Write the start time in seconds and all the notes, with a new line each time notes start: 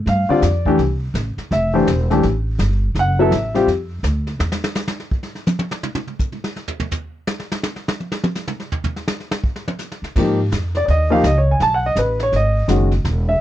0.06 G2 F5, brush sweep, snare
0.29 D3 G3 C4 F4 D5, muted upright bass stroke
0.42 F2, snare, hi-hat pedal
0.65 E3 A3 D4 G4, kick
0.78 C2, brush sweep, snare
1.14 A1, snare, hi-hat pedal
1.37 muted upright bass stroke, snare
1.51 F1 E5, brush sweep, snare
1.73 E3 A3 D4 G4 C5
1.87 E1, snare, hi-hat pedal
2.10 E3 A3 D4 G4, snare
2.23 A1, brush sweep, snare
2.59 G1, snare, hi-hat pedal
2.95 F#1, brush sweep, snare
2.99 F#5
3.19 F#3 B3 E4 A4 E5
3.31 A1, snare, hi-hat pedal
3.54 G3 C4 F4 G4, snare
3.67 F2, brush sweep, snare
4.03 D2, snare, hi-hat pedal
4.27 snare
4.39 E2, snare
4.52 snare
4.64 snare
4.75 snare, hi-hat pedal
4.88 snare
5.00 snare
5.11 kick
5.23 snare
5.35 snare
5.46 hi-hat pedal, high tom
5.59 high tom
5.71 snare
5.83 mid tom
5.95 mid tom
6.07 mid tom
6.19 kick, hi-hat pedal
6.32 mid tom
6.44 snare
6.56 snare
6.68 floor tom
6.80 floor tom
6.91 floor tom, hi-hat pedal
7.27 snare
7.40 snare
7.52 snare
7.63 snare, hi-hat pedal
7.76 snare
7.88 snare
8.00 high tom
8.12 snare
8.24 high tom
8.35 snare, hi-hat pedal
8.47 mid tom
8.60 snare
8.72 floor tom
8.84 floor tom
8.96 snare
9.07 snare, hi-hat pedal
9.20 snare
9.31 snare
9.44 kick
9.56 snare
9.68 high tom
9.78 snare, hi-hat pedal
9.92 snare
10.02 muted upright bass stroke, snare
10.16 G#2 F3 A#3 D#4 G4, brush sweep, kick, snare, crash
10.51 F2, snare, hi-hat pedal
10.75 D5, snare
10.86 D#2 D5, brush sweep, snare
10.90 D#5
11.10 F3 A#3 D#4 G4 F5
11.23 C#2 D#5, snare, hi-hat pedal
11.38 C#5
11.51 G#5
11.60 B1 A5, brush sweep, snare
11.74 F#5
11.86 D#5
11.96 A1 B4, snare, hi-hat pedal
12.19 C#5, snare
12.32 G#1 D#5, brush sweep, snare
12.68 F#1 D#3 G#3 C#4 F#4, snare, hi-hat pedal
12.91 snare
13.05 E1, brush sweep, snare
13.29 E5